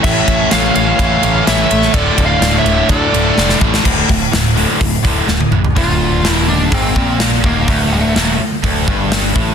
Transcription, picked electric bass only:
X:1
M:4/4
L:1/8
Q:1/4=125
K:Dm
V:1 name="Picked electric bass" clef=bass
A,,, A,,, A,,, A,,, A,,, A,,, A,,, A,,, | D,,, D,,, D,,, D,,, D,, D,,, F,,, A,,, | D,,, D,,, D,,,2 D,,, D,,, D,,, A,,, | [K:Cmix] D,,,2 _E,,,2 ^G,,, B,,,2 E,,, |
D,,,2 _E,,, z D,,, G,,,2 A,,, |]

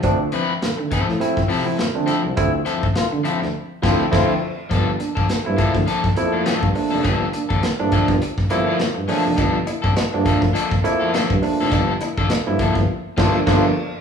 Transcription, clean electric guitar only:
X:1
M:4/4
L:1/16
Q:"Swing 16ths" 1/4=103
K:Gdor
V:1 name="Clean electric guitar"
z2 [F,CE=B] z3 [F,CEA] z3 [F,CEA] z3 [F,CEA] z | z2 [F,CEA] z3 [F,CEA] z3 [F,CEA]2 [F,CEA]2 z2 | [F,B,DA] z2 [F,B,DA] z2 [F,B,DA] z [F,B,DA] z2 [F,B,DA] [F,B,DA] z2 [F,B,DA] | [F,B,DA] z2 [F,B,DA] z2 [F,B,DA] z3 [F,B,DA] [F,B,DA] z2 [F,B,DA] z |
[F,B,DA] z2 [F,B,DA] z2 [F,B,DA] z [F,B,DA] z2 [F,B,DA] [F,B,DA] z2 [F,B,DA] | [F,B,DA] z2 [F,B,DA] z2 [F,B,DA] z3 [F,B,DA]2 [F,B,DA]2 z2 |]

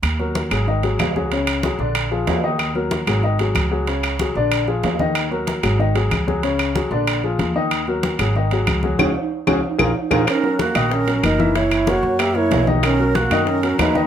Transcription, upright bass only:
X:1
M:4/4
L:1/8
Q:1/4=187
K:Ebm
V:1 name="Upright bass" clef=bass
E,,3 A,,,3 D,,2- | D,,3 B,,,3 E,,2- | E,,3 A,,,3 D,,2- | D,,3 B,,,3 E,,2- |
E,,3 A,,,3 D,,2- | D,,3 B,,,3 E,,2- | E,,3 A,,,3 D,,2 | D,, z2 D,, z B,,, z B,,, |
z3 B,,,3 G,,,2- | G,,,3 G,,3 C,,2- | C,,3 ^F,,3 ^D,,2 |]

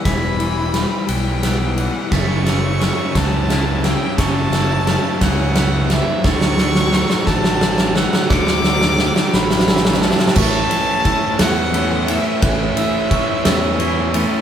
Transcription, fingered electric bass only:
X:1
M:6/8
L:1/8
Q:3/8=58
K:Amix
V:1 name="Fingered electric bass" clef=bass
E,,,3 B,,,3 | F,,,3 C,,3 | F,,,3 C,,3 | D,,3 A,,,3 |
D,,3 A,,,3 | A,,, z2 E,,3 | A,,, z2 E,,3 |]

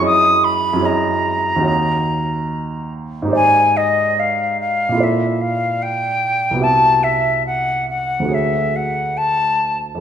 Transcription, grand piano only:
X:1
M:4/4
L:1/8
Q:1/4=73
K:D#phr
V:1 name="Grand piano"
[F,,EGcd]2 [F,,EGcd]2 [D,,DFcd]4 | [K:Cphr] [A,,EGc=d]4 [B,,=EF=Ad]4 | [C,,=B,^FG=e]4 [=D,,=A,F^G^c]4 |]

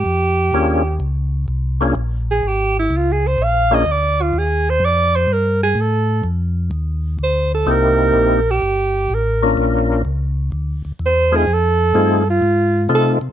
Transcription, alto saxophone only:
X:1
M:4/4
L:1/8
Q:"Swing" 1/4=126
K:Bb
V:1 name="Alto saxophone"
G4 z4 | z _A G =E (3F A c f _e | d F _A c d c B A | A2 z4 c A |
B3 G3 B z | z6 c _A | A3 F3 A z |]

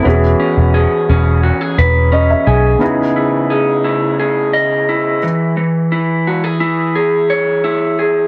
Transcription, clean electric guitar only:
X:1
M:4/4
L:1/16
Q:1/4=87
K:E
V:1 name="Clean electric guitar"
E,2 C2 G2 C2 F G B2 C2 G2 | C,2 E2 G2 E2 G2 d2 E2 E,2 | E,2 E2 F G E2 G2 c2 E2 G2 |]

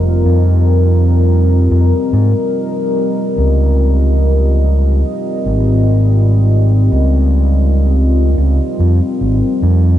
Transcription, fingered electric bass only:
X:1
M:4/4
L:1/16
Q:1/4=72
K:Dblyd
V:1 name="Fingered electric bass" clef=bass
F,,, F,,6- F,, F,, z A,, z4 z | D,,8 z2 A,,,6- | A,,, D,,6- D,, D,, z F,, z A,,, z F,,2 |]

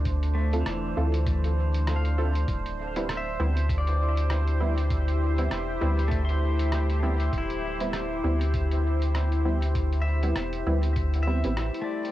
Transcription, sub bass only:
X:1
M:4/4
L:1/16
Q:"Swing 16ths" 1/4=99
K:Aphr
V:1 name="Sub bass" clef=bass
D,,4 E,,,2 D,,8- D,,2 | D,,,6 D,,8- D,,2- | D,,4 E,,,2 D,,8- D,,2 | D,,,6 D,,8- D,,2- |
D,,4 E,,,2 D,,4- D,, A,,,2 z3 |]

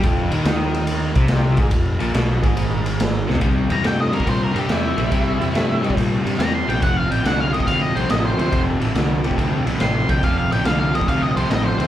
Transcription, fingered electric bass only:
X:1
M:4/4
L:1/8
Q:"Swing" 1/4=141
K:F
V:1 name="Fingered electric bass" clef=bass
F,,, _E,, E,,3 C,,2 _A,,, | F,,, B,,, =B,,, _A,,,4 C,, | C,, E,, G,,2 B,, G,, E,, B,,, | C,, E,, G,,2 B,, G,, E,, B,,, |
F,,, A,,, C,,2 D,, C,, A,,, D,, | F,,, A,,, C,,2 D,, C,, A,,, D,, | F,,, A,,, C,,2 D,, C,, A,,, D,, |]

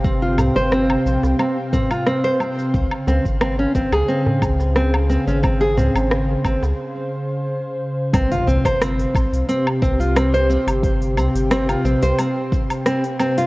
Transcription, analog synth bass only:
X:1
M:4/4
L:1/16
Q:"Swing 16ths" 1/4=89
K:none
V:1 name="Analog synth bass" clef=bass
G,,,2 C,, G,,,2 z _B,,, C,, z8 | _D,, z D,, _A,,,2 z A,,, D,, z2 D,,4 z A,,,- | _A,,,2 _D,, A,,,2 z A,,, D,, z8 | C,, z C,, G,,,2 z _B,,, C,, z2 C,,4 z G,,,- |
G,,,2 C,, G,,,2 z _B,,, C,, z8 |]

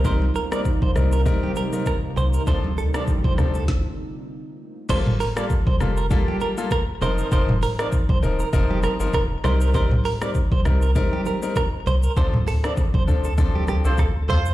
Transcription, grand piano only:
X:1
M:4/4
L:1/16
Q:"Swing 16ths" 1/4=99
K:Gm
V:1 name="Grand piano"
[G,CEB] z2 [G,CEB] z2 [G,CEB] z [G,CEB]3 [G,CEB] z4 | [F,CDA] z2 [F,CDA] z2 [F,CDA] z8 z | [G,B,FA] z2 [G,B,FA] z2 [G,B,FA] z [G,B,FA]3 [G,B,FA] z2 [F,CEB]2 | [F,CEB] z2 [F,CEB] z2 [F,CEB] z [F,CEB]3 [F,CEB] z2 [G,CEB]2 |
[G,CEB] z2 [G,CEB] z2 [G,CEB] z [G,CEB]3 [G,CEB] z4 | [F,CDA] z2 [F,CDA] z2 [F,CDA] z [F,CDA]3 [F,CDA] z4 |]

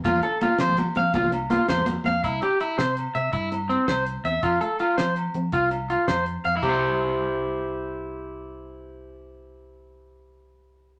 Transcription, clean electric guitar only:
X:1
M:12/8
L:1/8
Q:3/8=109
K:C
V:1 name="Clean electric guitar"
F A F c z f F z F c z f | E G E c z e E z C c z e | F A F c z2 F z F c z f | [EGc]12- |
[EGc]12 |]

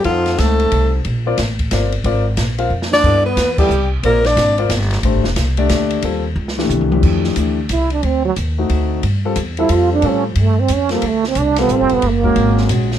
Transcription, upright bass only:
X:1
M:3/4
L:1/8
Q:"Swing" 1/4=180
K:Bblyd
V:1 name="Upright bass" clef=bass
F,,2 ^C,,2 =C,,2 | B,,,2 A,,,2 G,,,2 | ^G,,,2 ^A,,,2 ^E,,2 | G,,2 E,,2 C,,2 |
B,,,2 _A,,,2 G,,,2 | (3A,,, G,,, E,,, C,,2 D,,2 | _E,,2 _D,,2 C,,2 | [K:F] F,,2 D,,2 C,,2 |
D,,2 _E,,2 D,,2 | G,,2 E,,2 F,,2 | A,,2 G,,2 F,,2 | D,,2 C,,2 (3A,,, F,,, D,,, |
_G,,,2 _A,,,2 B,,,2 |]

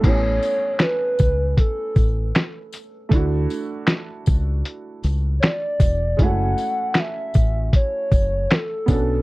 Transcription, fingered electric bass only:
X:1
M:4/4
L:1/8
Q:"Swing 16ths" 1/4=78
K:F#m
V:1 name="Fingered electric bass" clef=bass
A,,, z2 C,, z A,,, z2 | D,, z2 C,, z C,, z E,,, | F,,, z2 A,,, z F,,, z B,,, |]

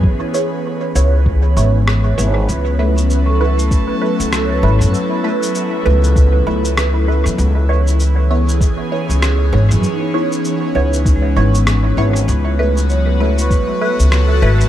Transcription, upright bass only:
X:1
M:4/4
L:1/16
Q:"Swing 16ths" 1/4=98
K:C#m
V:1 name="Upright bass" clef=bass
z6 C,,4 G,,,4 G,,,2 | C,,8 z3 C,,3 G,,, F,, | z6 C,,4 C,,4- C,, E,, | C,,8 z3 C,,3 G,,, F,, |
z6 C,,4 G,,,4 G,,,2 | C,,8 z3 C,,3 G,,, F,, |]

